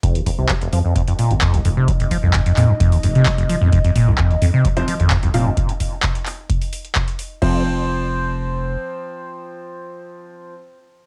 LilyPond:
<<
  \new Staff \with { instrumentName = "Analog synth pad" } { \time 4/4 \key f \minor \tempo 4 = 130 ees''1~ | ees''1~ | ees''1~ | ees''1 |
r1 | r1 | }
  \new Staff \with { instrumentName = "Grand piano" } { \time 4/4 \key f \minor r1 | r1 | r2 r16 <f c' c''>16 r4 <f c' f''>16 r16 | r1 |
<f c' c''>1~ | <f c' c''>1 | }
  \new Staff \with { instrumentName = "Acid bass" } { \clef bass \time 4/4 \key f \minor f,16 ees,16 f,16 c16 aes16 f,,16 f16 f,16 r16 f,16 bes,16 f,16 f,16 ees,16 f,16 c16 | aes16 f,,16 f16 f,16 f,16 f,16 bes,16 f,16 f,16 ees,16 f,16 c16 aes16 f,,16 f16 f,16 | f,16 f,16 bes,16 f,16 f,16 ees,16 f,16 c16 aes16 f,,16 f16 f,16 f,16 f,16 bes,16 f,16 | r1 |
f,8 r2. r8 | r1 | }
  \new Staff \with { instrumentName = "Analog synth bass" } { \clef bass \time 4/4 \key f \minor f,,16 r8 c,16 r8 f,16 r4 aes,,16 r16 c,16 f,,8~ | f,,8. c,16 r8 f,16 r8. f,,4~ f,,16 ees,,16 | f,,16 r8 c,16 r8 f,16 r4 aes,,16 r16 c,16 f,,16 r16 | r1 |
f,,2. r4 | r1 | }
  \new DrumStaff \with { instrumentName = "Drums" } \drummode { \time 4/4 <hh bd>16 hh16 <hho bd>8 <hc hh bd>16 hh16 hho8 <hh bd>16 hh16 hho16 hh16 <hc hh bd>16 hh16 hho8 | <hh bd>16 hh16 <hho bd>8 <hc hh bd>16 hh16 <hc hho>8 <hh bd>16 hho16 hho16 hh16 <hc hh bd>16 hh16 hho8 | <hh bd>16 hh16 <hho bd>8 <hc hh bd>16 hh16 hho8 <hh bd>16 hh16 hho16 hh16 <hc hh bd>16 hh16 hho8 | <hh bd>16 hh16 <hho bd>8 <hc hh bd>16 hh16 <hc hho>8 <hh bd>16 hho16 hho16 hh16 <hc hh bd>16 hh16 hho8 |
<cymc bd>4 r4 r4 r4 | r4 r4 r4 r4 | }
>>